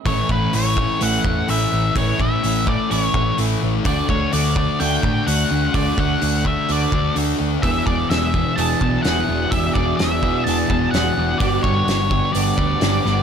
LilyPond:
<<
  \new Staff \with { instrumentName = "Lead electric guitar" } { \time 4/4 \key a \mixolydian \tempo 4 = 127 cis''8 b'8 cis''4 fis''4 e''4 | cis''8 e''4 d''8 cis''4 r4 | d''8 cis''8 d''4 g''4 fis''4 | d''8 fis''4 e''8 d''4 r4 |
e''8 d''8 e''4 a''4 fis''4 | e''8 d''8 e''4 a''4 fis''4 | d''8 cis''4. d''2 | }
  \new Staff \with { instrumentName = "Ambient pad" } { \time 4/4 \key a \mixolydian << { r1 | r1 | r1 | r1 |
e''1 | fis''1~ | fis''1 | } \\ { r1 | r1 | r1 | r1 |
<fis' d''>1~ | <fis' d''>1 | <g' b'>1 | } >> }
  \new Staff \with { instrumentName = "Overdriven electric guitar" } { \time 4/4 \key a \mixolydian <a, e a cis' e'>8 <a cis' e'>8 <e a cis' e'>8 <a cis' e'>8 <a, e a cis' e'>8 <a cis' e'>8 <e a cis' e'>8 <a cis' e'>8 | <a, e a cis' e'>8 <a cis' e'>8 <e a cis' e'>8 <a cis' e'>8 <a, e a cis' e'>8 <a cis' e'>8 <e a cis' e'>8 <a cis' e'>8 | <d a d' fis'>8 <a d' fis'>8 <d a d' fis'>8 <a d' fis'>8 <d a d' fis'>8 <a d' fis'>8 <d a d' fis'>8 <a d' fis'>8 | <d a d' fis'>8 <a d' fis'>8 <d a d' fis'>8 <a d' fis'>8 <d a d' fis'>8 <a d' fis'>8 <d a d' fis'>8 <a d' fis'>8 |
<e, b, e b d' gis'>8 <e b d' gis'>8 <e b d' gis'>8 <e b d' gis'>8 <e, b, e b d' gis'>8 <e b d' gis'>8 <e b d' gis'>8 <e b d' gis'>8 | <e, b, e b d' gis'>8 <e b d' gis'>8 <e b d' gis'>8 <e b d' gis'>8 <e, b, e b d' gis'>8 <e b d' gis'>8 <e b d' gis'>8 <e b d' gis'>8 | <g, d g b d' g'>8 <g b d' g'>8 <g b d' g'>8 <g b d' g'>8 <g, d g b d' g'>8 <g b d' g'>8 <g b d' g'>8 <g b d' g'>8 | }
  \new Staff \with { instrumentName = "Distorted electric guitar" } { \clef bass \time 4/4 \key a \mixolydian <a, e a>8 <e a>8 <a, e a>8 <e a>8 <a, e a>8 <e a>8 <a, e a>8 <e a>8 | <a, e a>8 <e a>8 <a, e a>8 <e a>8 <a, e a>8 <e a>8 <a, e a>8 <e a>8 | <d a d'>8 <a d'>8 <d a d'>8 <a d'>8 <d a d'>8 <a d'>8 <d a d'>8 <a d'>8 | <d a d'>8 <a d'>8 <d a d'>8 <a d'>8 <d a d'>8 <a d'>8 <d a d'>8 <a d'>8 |
<e, b, e>8 <b, e>8 <e, b, e>8 <b, e>8 <e, b, e>8 <b, e>8 <e, b, e>8 <b, e>8 | <e, b, e>8 <b, e>8 <e, b, e>8 <b, e>8 <e, b, e>8 <b, e>8 <e, b, e>8 <b, e>8 | <g, d g>8 <d g>8 <g, d g>8 <d g>8 <g, d g>8 <d g>8 <g, d g>8 <d g>8 | }
  \new Staff \with { instrumentName = "Fingered electric bass" } { \clef bass \time 4/4 \key a \mixolydian a,,8 a,,8 a,,4 a,,8 e,8 a,,8 a,,8 | a,,8 a,,8 a,,4 a,,8 a,,8 a,,8 a,,8 | d,8 d,8 d,4 d,8 a,8 d,8 d,8 | d,8 d,8 d,4 d,8 d,8 d,8 d,8 |
e,,8 e,,8 e,,4 e,,8 b,,8 e,,8 e,,8 | e,,8 e,,8 e,,4 e,,8 e,,8 e,,8 e,,8 | g,,8 g,,8 g,,4 g,,8 d,8 g,,8 g,,8 | }
  \new DrumStaff \with { instrumentName = "Drums" } \drummode { \time 4/4 <hho bd>8 bd8 hho8 bd8 hho8 bd8 hho4 | <hho bd>8 bd8 hho8 bd8 hho8 bd8 hho4 | <hho bd>8 bd8 hho8 bd8 hho8 bd8 hho4 | <hho bd>8 bd8 hho8 bd8 hho8 bd8 hho4 |
<hho bd>8 bd8 <hho sn>8 bd8 hho8 bd8 <hho sn>4 | <hho bd>8 bd8 <hho sn>8 bd8 hho8 bd8 <hho sn>4 | <hho bd>8 bd8 <hho sn>8 bd8 hho8 bd8 <hho sn>8 sn8 | }
>>